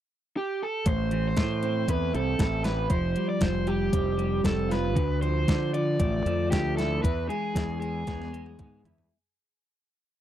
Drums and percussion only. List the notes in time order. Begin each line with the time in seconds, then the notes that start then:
0.86 kick, closed hi-hat
1.11 closed hi-hat
1.36 kick, snare, closed hi-hat
1.63 closed hi-hat
1.88 kick, closed hi-hat
2.15 closed hi-hat
2.39 kick, snare, closed hi-hat
2.64 snare, closed hi-hat
2.90 kick, closed hi-hat
3.16 closed hi-hat
3.41 kick, snare, closed hi-hat
3.67 closed hi-hat
3.93 kick, closed hi-hat
4.19 closed hi-hat
4.44 kick, snare, closed hi-hat
4.71 snare, closed hi-hat
4.96 kick, closed hi-hat
5.23 closed hi-hat
5.48 kick, snare, closed hi-hat
5.74 closed hi-hat
6.00 kick, closed hi-hat
6.26 closed hi-hat
6.52 kick, snare, closed hi-hat
6.78 snare, closed hi-hat
7.04 kick, closed hi-hat
7.30 closed hi-hat
7.56 kick, snare, closed hi-hat
7.82 closed hi-hat
8.07 kick, snare, closed hi-hat
8.22 snare
8.34 closed hi-hat
8.46 high tom
8.59 kick, closed hi-hat, mid tom
8.85 closed hi-hat, floor tom
8.98 floor tom